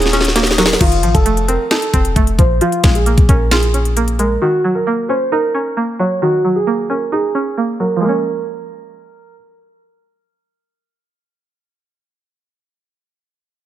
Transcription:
0.00 0.77 D#1 loud
0.00 0.13 D#3 medium
0.00 0.36 F#3 medium
0.00 0.34 A#3 medium
0.00 0.12 C#4 medium
0.00 0.81 D#4 loud
0.00 0.54 G#4 medium
0.00 0.77 C#5 medium
0.00 0.77 F#5 medium
0.00 0.77 D#6 medium
0.00 closed hi-hat medium
0.06 snare medium
0.13 0.81 C#4 medium
0.13 snare medium
0.13 closed hi-hat medium
0.21 snare medium
0.21 closed hi-hat medium
0.28 snare medium
0.35 0.81 A#3 medium
0.35 snare medium
0.35 closed hi-hat medium
0.43 snare medium
0.43 closed hi-hat medium
0.51 snare loud
0.58 0.81 F#3 medium
0.58 0.78 A#4 medium
0.58 snare medium
0.58 closed hi-hat medium
0.66 snare loud
0.73 snare medium
0.81 1.05 F1 loud
0.81 1.93 D#3 loud
0.81 1.13 F4 loud
0.81 kick loud
0.81 closed hi-hat medium
0.81 crash medium
0.92 closed hi-hat medium
1.03 1.14 A1 loud
1.03 2.16 F3 medium
1.03 closed hi-hat medium
1.14 1.58 F1 loud
1.14 1.46 A4 medium
1.14 kick medium
1.14 closed hi-hat medium
1.26 2.15 A3 medium
1.26 closed hi-hat medium
1.37 closed hi-hat medium
1.48 1.92 C4 medium
1.48 1.68 A#4 medium
1.48 closed hi-hat medium
1.71 2.61 D#4 loud
1.71 2.35 A4 medium
1.71 finger snap medium
1.71 snare loud
1.71 closed hi-hat medium
1.82 closed hi-hat medium
1.94 2.15 F1 loud
1.94 2.61 C4 medium
1.94 kick medium
1.94 closed hi-hat medium
2.05 closed hi-hat medium
2.16 2.38 F1 loud
2.16 2.61 A3 medium
2.16 kick loud
2.16 closed hi-hat medium
2.27 closed hi-hat medium
2.39 2.60 A#1 loud
2.39 2.60 F3 medium
2.39 2.58 C5 medium
2.39 kick loud
2.39 closed hi-hat medium
2.61 3.74 F3 loud
2.61 2.93 F4 medium
2.61 closed hi-hat medium
2.72 closed hi-hat medium
2.84 3.16 A#1 loud
2.84 3.96 G#3 medium
2.84 finger snap medium
2.84 kick medium
2.84 snare loud
2.84 closed hi-hat medium
2.95 3.27 G#4 medium
2.95 closed hi-hat medium
3.06 3.95 A#3 medium
3.06 closed hi-hat medium
3.18 3.28 A#1 loud
3.18 kick loud
3.18 closed hi-hat medium
3.29 4.38 A#1 loud
3.29 3.73 C#4 medium
3.29 3.48 A#4 medium
3.29 kick medium
3.29 closed hi-hat medium
3.51 4.42 F4 loud
3.51 4.15 G#4 medium
3.51 finger snap medium
3.51 snare loud
3.51 closed hi-hat medium
3.63 closed hi-hat medium
3.74 4.42 C#4 medium
3.74 closed hi-hat medium
3.85 closed hi-hat medium
3.97 4.42 A#3 medium
3.97 closed hi-hat medium
4.08 closed hi-hat medium
4.19 4.42 G#3 medium
4.19 4.38 A#4 medium
4.19 closed hi-hat medium
4.42 5.54 D#3 medium
4.42 4.73 F#4 loud
4.64 5.77 F#3 medium
4.75 5.07 A#4 medium
4.87 5.76 A#3 medium
5.09 5.53 C#4 medium
5.09 5.28 C5 medium
5.32 6.45 D#4 loud
5.32 5.96 A#4 medium
5.55 6.67 C#4 medium
5.77 6.66 A#3 medium
5.99 6.43 F#3 medium
5.99 6.19 C#5 medium
6.22 7.35 D#3 medium
6.22 6.54 F#4 loud
6.45 7.57 F#3 medium
6.56 6.88 G#4 medium
6.67 7.56 A#3 medium
6.90 7.34 C#4 medium
6.90 7.09 A#4 medium
7.12 8.02 D#4 medium
7.12 7.76 G#4 medium
7.35 8.02 C#4 medium
7.57 8.02 A#3 medium
7.80 8.02 F#3 medium
7.80 8.00 A#4 medium
7.96 12.33 F3 medium
8.01 12.37 G#3 medium
8.01 9.34 A#4 medium
8.05 12.41 A#3 medium
8.05 12.45 C#4 medium

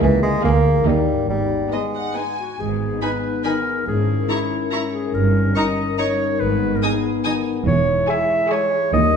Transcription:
0.00 0.35 C#2 medium
0.00 0.37 C#3 medium
0.00 0.22 E3 medium
0.00 0.29 A#3 soft
0.00 1.30 A#3 medium
0.00 0.33 A#3 medium
0.00 0.41 E4 soft
0.00 0.38 G#4 soft
0.00 0.87 G#4 medium
0.00 0.33 G#4 medium
0.00 0.81 A#4 soft
0.00 0.33 E5 soft
0.23 0.79 D3 soft
0.23 0.44 G#3 medium
0.31 0.72 A#3 soft
0.35 0.84 F4 soft
0.44 0.77 D2 medium
0.44 0.78 D2 medium
0.44 0.75 A#3 medium
0.44 0.88 A#3 medium
0.44 0.76 G#4 medium
0.44 0.75 F5 medium
0.69 1.23 D#3 soft
0.73 1.25 A#3 soft
0.78 1.20 D#4 soft
0.83 1.21 D#2 medium
0.83 1.18 A#3 medium
0.83 1.30 A#4 soft
0.83 1.18 D#5 soft
0.87 1.21 D#2 medium
0.87 1.29 G3 medium
0.87 2.38 D#4 medium
0.87 1.19 D#4 soft
1.12 2.53 G#2 soft
1.17 3.82 B3 soft
1.21 3.02 D#4 soft
1.25 1.64 G#1 soft
1.25 1.64 G#2 medium
1.25 1.74 G3 medium
1.25 2.80 G#4 soft
1.30 2.36 B3 soft
1.72 2.16 G#3 medium
1.72 2.05 B3 soft
1.72 2.05 D#4 soft
1.72 1.81 D#5 soft
1.95 2.16 F#5 soft
2.16 2.49 B3 soft
2.16 2.48 D#4 soft
2.16 2.59 G#5 soft
2.38 2.61 F#4 medium
2.59 2.95 G#1 soft
2.59 2.95 G#2 soft
2.59 3.86 G#2 soft
2.59 3.83 B3 soft
2.59 3.83 D#4 soft
2.59 3.02 G#4 medium
2.81 3.23 G#4 soft
3.02 3.10 D#4 soft
3.02 3.44 B4 medium
3.02 3.10 G#5 soft
3.02 3.10 B5 soft
3.24 3.65 G#4 soft
3.44 3.89 D#3 soft
3.44 3.52 D#4 soft
3.44 3.87 A#4 medium
3.44 3.52 G#5 soft
3.44 3.52 B5 soft
3.66 5.16 G#4 soft
3.87 4.23 G#1 soft
3.87 5.16 G#2 soft
3.87 4.23 G#2 medium
3.87 6.37 C#4 soft
3.87 5.14 E4 soft
3.87 4.29 G#4 medium
4.09 4.50 A#4 soft
4.29 4.37 E4 soft
4.29 5.16 E4 soft
4.29 4.72 E4 medium
4.29 4.37 A#5 soft
4.29 4.38 C#6 soft
4.51 4.92 A#4 soft
4.72 5.16 G#3 soft
4.72 4.80 E4 soft
4.72 4.80 A#5 soft
4.72 4.80 C#6 soft
4.93 5.16 G#4 medium
4.93 5.34 A#4 soft
5.14 5.49 G1 soft
5.14 6.42 G2 soft
5.14 5.49 G2 medium
5.14 7.63 D#4 soft
5.14 5.56 A#4 medium
5.36 5.76 A#4 soft
5.56 5.64 D#4 soft
5.56 6.81 D#4 soft
5.56 5.98 D#5 medium
5.56 5.65 A#5 soft
5.56 5.64 C#6 soft
5.98 6.42 G3 soft
5.98 6.07 D#4 soft
5.98 6.42 C#5 medium
5.98 6.06 A#5 soft
5.98 6.07 C#6 soft
6.19 6.42 A#4 soft
6.40 6.75 G#1 medium
6.40 7.68 G#2 soft
6.40 6.75 G#2 medium
6.40 7.64 B3 medium
6.40 6.77 B4 medium
6.61 7.02 G#4 soft
6.76 6.85 A#4 soft
6.82 7.68 D#4 soft
6.82 6.91 D#4 soft
6.82 7.25 G#4 medium
6.82 6.90 G#5 soft
6.82 6.90 D#6 soft
7.03 7.45 G#4 soft
7.24 7.68 D#3 soft
7.24 7.33 D#4 soft
7.24 7.32 G#5 medium
7.24 7.32 D#6 soft
7.46 7.87 G#4 soft
7.66 8.00 E1 medium
7.66 8.00 E2 medium
7.66 8.95 E3 medium
7.66 8.91 G#3 medium
7.66 8.93 E4 medium
7.66 8.06 C#5 medium
7.88 8.29 G#4 medium
8.08 8.95 E4 soft
8.08 8.40 G#4 medium
8.08 8.53 E5 medium
8.08 8.40 G#5 medium
8.08 8.40 C#6 medium
8.30 8.71 G#4 medium
8.51 8.95 G#3 soft
8.51 8.82 G#4 medium
8.51 8.93 C#5 medium
8.51 8.83 G#5 medium
8.51 8.83 C#6 medium
8.72 8.95 G#4 medium
8.93 9.17 D#2 medium
8.93 9.17 D#3 medium
8.93 9.17 G3 medium
8.93 9.17 D#4 medium
8.93 9.17 D#5 medium

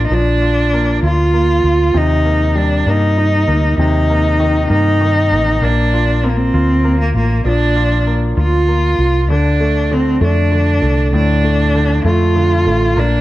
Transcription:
0.00 0.73 A#3 medium
0.00 0.42 F4 medium
0.06 0.15 D#4 medium
0.10 0.98 A#1 medium
0.10 1.91 F3 medium
0.10 1.04 D4 loud
0.42 1.03 F4 medium
0.73 1.32 A#3 soft
1.03 1.60 D2 medium
1.03 1.63 F4 soft
1.03 1.98 F4 medium
1.34 1.93 A#3 soft
1.64 1.93 D2 medium
1.64 1.94 F4 soft
1.94 2.82 D#2 loud
1.94 3.74 C3 medium
1.94 2.60 D#4 medium
2.25 2.86 A#3 medium
2.55 3.75 G3 soft
2.55 2.91 D4 medium
2.86 3.44 G2 loud
2.86 3.46 A#3 medium
2.86 3.79 D#4 loud
3.18 4.36 D#4 soft
3.48 3.77 D2 medium
3.48 4.08 A#3 medium
3.78 4.66 D#2 medium
3.78 5.59 C3 medium
3.78 4.67 D#4 medium
4.10 4.68 A#3 medium
4.40 5.00 D#3 medium
4.70 5.33 G2 loud
4.70 5.30 A#3 medium
4.70 5.65 D#4 loud
5.01 5.60 D#3 medium
5.31 5.60 A1 medium
5.31 5.61 A#3 soft
5.62 6.50 A#1 loud
5.62 6.22 A#3 medium
5.62 6.25 D4 loud
5.93 6.52 F4 medium
6.23 6.83 A#3 soft
6.23 6.31 C4 medium
6.30 6.39 A#3 medium
6.37 6.99 C4 loud
6.54 7.12 D2 medium
6.54 7.13 F4 medium
6.84 8.03 A#3 medium
7.00 7.14 A#3 medium
7.15 7.44 A1 medium
7.15 7.45 A#3 medium
7.15 7.74 F4 soft
7.45 8.33 A#1 loud
7.45 9.26 F3 medium
7.45 8.12 D4 medium
7.76 8.35 F4 medium
8.07 8.67 A#3 soft
8.37 8.95 D2 medium
8.37 8.98 F4 medium
8.37 9.27 F4 medium
8.68 9.28 A#3 soft
8.98 9.29 C2 medium
8.98 9.29 F4 soft
9.29 10.17 D2 medium
9.29 9.90 D3 medium
9.29 9.94 D4 medium
9.61 10.20 A3 soft
9.92 10.50 D3 medium
9.92 10.23 C4 medium
10.21 10.79 F2 medium
10.21 10.80 A3 medium
10.21 11.10 D4 medium
10.52 11.71 D3 soft
10.82 11.11 C2 medium
10.82 11.43 A3 soft
11.13 12.01 D2 loud
11.13 12.93 A2 medium
11.13 12.02 D4 loud
11.44 12.04 A3 medium
11.75 12.34 D3 medium
12.04 12.67 F2 medium
12.04 12.65 A3 medium
12.04 13.00 F4 loud
12.36 12.95 D3 medium
12.66 12.95 A1 medium
12.66 12.96 A3 soft
12.97 13.21 A#1 medium
12.97 13.21 A#3 medium
12.97 13.21 D4 loud

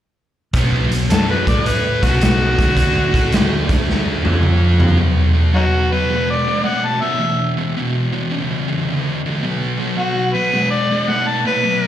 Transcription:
0.53 0.89 B1 medium
0.53 0.91 B2 medium
0.53 0.91 F#3 medium
0.53 0.92 B3 medium
0.53 kick medium
0.53 closed hi-hat medium
0.91 1.08 B1 medium
0.91 1.07 B2 medium
0.91 1.07 F#3 medium
0.91 closed hi-hat soft
1.10 1.45 F#2 medium
1.10 1.47 F#3 medium
1.10 1.47 C#4 medium
1.10 1.48 F#4 medium
1.10 1.29 A4 medium
1.10 snare medium
1.10 closed hi-hat medium
1.30 1.47 B4 medium
1.47 1.99 A2 medium
1.47 2.03 A3 medium
1.47 2.03 E4 medium
1.47 2.03 A4 medium
1.47 1.68 D5 medium
1.47 kick medium
1.47 closed hi-hat medium
1.66 2.05 B4 medium
1.66 closed hi-hat medium
2.02 2.55 B1 medium
2.02 2.57 B2 medium
2.02 2.58 F#3 medium
2.02 2.58 B3 medium
2.02 3.66 F#4 loud
2.02 kick medium
2.02 closed hi-hat medium
2.21 snare medium
2.21 closed hi-hat medium
2.58 3.11 D2 medium
2.58 3.13 D3 medium
2.58 3.13 A3 medium
2.58 3.14 D4 medium
2.58 kick medium
2.58 closed hi-hat medium
2.77 kick medium
2.77 closed hi-hat medium
3.14 3.31 A2 medium
3.14 3.32 A3 medium
3.14 3.32 E4 medium
3.14 3.32 A4 medium
3.14 kick medium
3.14 closed hi-hat soft
3.32 3.67 D2 medium
3.32 3.69 D3 medium
3.32 3.69 A3 medium
3.32 3.69 D4 medium
3.32 snare loud
3.32 closed hi-hat medium
3.69 4.21 D2 medium
3.69 4.24 D3 medium
3.69 4.25 A3 medium
3.69 4.24 D4 medium
3.69 kick loud
3.69 closed hi-hat medium
3.89 snare soft
4.25 4.95 F2 medium
4.25 4.98 F3 medium
4.25 4.99 C4 medium
4.25 4.99 F4 medium
4.25 high tom medium
4.34 high tom medium
4.43 mid tom medium
4.80 floor tom medium
4.89 floor tom medium
4.98 5.32 B2 medium
4.98 5.33 F#3 medium
5.35 5.52 B2 medium
5.35 5.52 F#3 medium
5.53 5.88 B2 medium
5.53 5.88 F#3 medium
5.53 5.62 C#4 medium
5.53 5.64 D#4 medium
5.53 5.94 F#4 medium
5.92 6.08 B2 medium
5.92 6.08 F#3 medium
5.92 6.28 B4 medium
6.09 6.43 B2 medium
6.09 6.44 G#3 medium
6.30 6.68 D5 medium
6.47 6.62 B2 medium
6.47 6.64 G#3 medium
6.64 6.98 B2 medium
6.64 6.99 A3 medium
6.64 6.87 F#5 medium
6.85 7.04 A5 medium
7.02 7.19 B2 medium
7.02 7.19 A3 medium
7.02 7.56 E5 medium
7.20 7.54 E2 medium
7.20 7.54 B2 medium
7.57 7.74 E2 medium
7.57 7.74 B2 medium
7.77 8.10 E2 medium
7.77 8.10 B2 medium
8.12 8.29 E2 medium
8.12 8.29 B2 medium
8.31 8.65 E2 medium
8.31 8.65 C#3 medium
8.68 8.85 E2 medium
8.68 8.85 C#3 medium
8.87 9.20 E2 medium
8.87 9.20 D3 medium
9.26 9.41 E2 medium
9.26 9.41 D3 medium
9.43 9.76 B2 medium
9.43 9.77 F#3 medium
9.80 9.95 B2 medium
9.80 9.96 F#3 medium
9.97 10.31 B2 medium
9.97 10.31 F#3 medium
9.97 10.37 F#4 loud
10.35 10.51 B2 medium
10.35 10.52 F#3 medium
10.35 10.70 B4 loud
10.54 10.87 B2 medium
10.54 10.87 G#3 medium
10.71 11.10 D5 medium
10.91 11.07 B2 medium
10.91 11.07 G#3 medium
11.08 11.42 B2 medium
11.08 11.42 A3 medium
11.08 11.29 F#5 medium
11.27 11.45 A5 medium
11.45 11.62 B2 medium
11.45 11.62 A3 medium
11.45 11.87 B4 medium
11.63 11.87 B2 medium
11.63 11.87 F#3 medium

